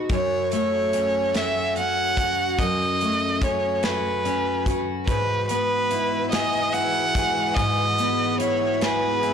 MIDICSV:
0, 0, Header, 1, 5, 480
1, 0, Start_track
1, 0, Tempo, 829876
1, 58, Time_signature, 6, 3, 24, 8
1, 5399, End_track
2, 0, Start_track
2, 0, Title_t, "Violin"
2, 0, Program_c, 0, 40
2, 70, Note_on_c, 0, 73, 77
2, 288, Note_off_c, 0, 73, 0
2, 303, Note_on_c, 0, 73, 87
2, 787, Note_on_c, 0, 76, 82
2, 796, Note_off_c, 0, 73, 0
2, 1021, Note_off_c, 0, 76, 0
2, 1025, Note_on_c, 0, 78, 95
2, 1496, Note_on_c, 0, 75, 85
2, 1504, Note_off_c, 0, 78, 0
2, 1984, Note_on_c, 0, 73, 70
2, 1992, Note_off_c, 0, 75, 0
2, 2215, Note_on_c, 0, 71, 71
2, 2224, Note_off_c, 0, 73, 0
2, 2757, Note_off_c, 0, 71, 0
2, 2925, Note_on_c, 0, 71, 68
2, 3155, Note_off_c, 0, 71, 0
2, 3170, Note_on_c, 0, 71, 78
2, 3631, Note_off_c, 0, 71, 0
2, 3649, Note_on_c, 0, 75, 81
2, 3888, Note_on_c, 0, 78, 94
2, 3896, Note_off_c, 0, 75, 0
2, 4361, Note_on_c, 0, 75, 85
2, 4370, Note_off_c, 0, 78, 0
2, 4849, Note_off_c, 0, 75, 0
2, 4859, Note_on_c, 0, 73, 72
2, 5109, Note_on_c, 0, 71, 77
2, 5117, Note_off_c, 0, 73, 0
2, 5399, Note_off_c, 0, 71, 0
2, 5399, End_track
3, 0, Start_track
3, 0, Title_t, "Steel-string acoustic guitar"
3, 0, Program_c, 1, 25
3, 0, Note_on_c, 1, 47, 63
3, 0, Note_on_c, 1, 56, 48
3, 0, Note_on_c, 1, 63, 48
3, 0, Note_on_c, 1, 66, 53
3, 59, Note_on_c, 1, 42, 65
3, 60, Note_off_c, 1, 47, 0
3, 110, Note_off_c, 1, 56, 0
3, 110, Note_off_c, 1, 63, 0
3, 304, Note_on_c, 1, 57, 49
3, 543, Note_on_c, 1, 61, 48
3, 772, Note_off_c, 1, 66, 0
3, 775, Note_on_c, 1, 66, 58
3, 1018, Note_off_c, 1, 61, 0
3, 1025, Note_on_c, 1, 61, 51
3, 1260, Note_off_c, 1, 66, 0
3, 1262, Note_on_c, 1, 66, 57
3, 1494, Note_off_c, 1, 42, 0
3, 1501, Note_on_c, 1, 42, 64
3, 1740, Note_off_c, 1, 57, 0
3, 1747, Note_on_c, 1, 57, 47
3, 1974, Note_off_c, 1, 61, 0
3, 1981, Note_on_c, 1, 61, 46
3, 2221, Note_off_c, 1, 66, 0
3, 2223, Note_on_c, 1, 66, 53
3, 2452, Note_off_c, 1, 61, 0
3, 2459, Note_on_c, 1, 61, 49
3, 2697, Note_off_c, 1, 66, 0
3, 2700, Note_on_c, 1, 66, 50
3, 2936, Note_off_c, 1, 42, 0
3, 2938, Note_on_c, 1, 44, 62
3, 2987, Note_off_c, 1, 61, 0
3, 2991, Note_off_c, 1, 57, 0
3, 3184, Note_on_c, 1, 59, 47
3, 3420, Note_on_c, 1, 64, 47
3, 3438, Note_off_c, 1, 66, 0
3, 3663, Note_on_c, 1, 68, 56
3, 3891, Note_off_c, 1, 64, 0
3, 3898, Note_on_c, 1, 64, 49
3, 4136, Note_off_c, 1, 68, 0
3, 4139, Note_on_c, 1, 68, 52
3, 4367, Note_off_c, 1, 44, 0
3, 4374, Note_on_c, 1, 44, 66
3, 4618, Note_off_c, 1, 59, 0
3, 4624, Note_on_c, 1, 59, 49
3, 4852, Note_off_c, 1, 64, 0
3, 4859, Note_on_c, 1, 64, 51
3, 5101, Note_off_c, 1, 68, 0
3, 5103, Note_on_c, 1, 68, 59
3, 5333, Note_off_c, 1, 64, 0
3, 5340, Note_on_c, 1, 64, 53
3, 5399, Note_off_c, 1, 44, 0
3, 5399, Note_off_c, 1, 59, 0
3, 5399, Note_off_c, 1, 64, 0
3, 5399, Note_off_c, 1, 68, 0
3, 5399, End_track
4, 0, Start_track
4, 0, Title_t, "String section"
4, 0, Program_c, 2, 48
4, 2944, Note_on_c, 2, 71, 64
4, 2945, Note_on_c, 2, 44, 62
4, 2947, Note_on_c, 2, 52, 55
4, 2948, Note_on_c, 2, 66, 56
4, 5399, Note_off_c, 2, 44, 0
4, 5399, Note_off_c, 2, 52, 0
4, 5399, Note_off_c, 2, 66, 0
4, 5399, Note_off_c, 2, 71, 0
4, 5399, End_track
5, 0, Start_track
5, 0, Title_t, "Drums"
5, 55, Note_on_c, 9, 42, 68
5, 56, Note_on_c, 9, 36, 86
5, 113, Note_off_c, 9, 42, 0
5, 114, Note_off_c, 9, 36, 0
5, 298, Note_on_c, 9, 42, 48
5, 356, Note_off_c, 9, 42, 0
5, 539, Note_on_c, 9, 42, 54
5, 597, Note_off_c, 9, 42, 0
5, 778, Note_on_c, 9, 42, 74
5, 784, Note_on_c, 9, 38, 85
5, 836, Note_off_c, 9, 42, 0
5, 842, Note_off_c, 9, 38, 0
5, 1018, Note_on_c, 9, 42, 37
5, 1076, Note_off_c, 9, 42, 0
5, 1256, Note_on_c, 9, 36, 71
5, 1258, Note_on_c, 9, 42, 68
5, 1314, Note_off_c, 9, 36, 0
5, 1316, Note_off_c, 9, 42, 0
5, 1496, Note_on_c, 9, 36, 93
5, 1497, Note_on_c, 9, 42, 69
5, 1554, Note_off_c, 9, 36, 0
5, 1555, Note_off_c, 9, 42, 0
5, 1740, Note_on_c, 9, 42, 50
5, 1798, Note_off_c, 9, 42, 0
5, 1976, Note_on_c, 9, 36, 79
5, 1978, Note_on_c, 9, 42, 57
5, 2034, Note_off_c, 9, 36, 0
5, 2035, Note_off_c, 9, 42, 0
5, 2214, Note_on_c, 9, 42, 70
5, 2220, Note_on_c, 9, 38, 88
5, 2272, Note_off_c, 9, 42, 0
5, 2278, Note_off_c, 9, 38, 0
5, 2460, Note_on_c, 9, 42, 39
5, 2518, Note_off_c, 9, 42, 0
5, 2696, Note_on_c, 9, 36, 70
5, 2700, Note_on_c, 9, 42, 70
5, 2754, Note_off_c, 9, 36, 0
5, 2758, Note_off_c, 9, 42, 0
5, 2935, Note_on_c, 9, 36, 89
5, 2935, Note_on_c, 9, 42, 67
5, 2993, Note_off_c, 9, 36, 0
5, 2993, Note_off_c, 9, 42, 0
5, 3176, Note_on_c, 9, 42, 50
5, 3234, Note_off_c, 9, 42, 0
5, 3416, Note_on_c, 9, 42, 54
5, 3474, Note_off_c, 9, 42, 0
5, 3656, Note_on_c, 9, 42, 78
5, 3662, Note_on_c, 9, 38, 90
5, 3714, Note_off_c, 9, 42, 0
5, 3720, Note_off_c, 9, 38, 0
5, 3896, Note_on_c, 9, 42, 38
5, 3954, Note_off_c, 9, 42, 0
5, 4136, Note_on_c, 9, 36, 77
5, 4139, Note_on_c, 9, 42, 67
5, 4194, Note_off_c, 9, 36, 0
5, 4197, Note_off_c, 9, 42, 0
5, 4375, Note_on_c, 9, 42, 69
5, 4376, Note_on_c, 9, 36, 97
5, 4433, Note_off_c, 9, 42, 0
5, 4434, Note_off_c, 9, 36, 0
5, 4618, Note_on_c, 9, 42, 51
5, 4676, Note_off_c, 9, 42, 0
5, 4857, Note_on_c, 9, 42, 54
5, 4915, Note_off_c, 9, 42, 0
5, 5098, Note_on_c, 9, 42, 78
5, 5104, Note_on_c, 9, 38, 89
5, 5156, Note_off_c, 9, 42, 0
5, 5162, Note_off_c, 9, 38, 0
5, 5338, Note_on_c, 9, 42, 38
5, 5396, Note_off_c, 9, 42, 0
5, 5399, End_track
0, 0, End_of_file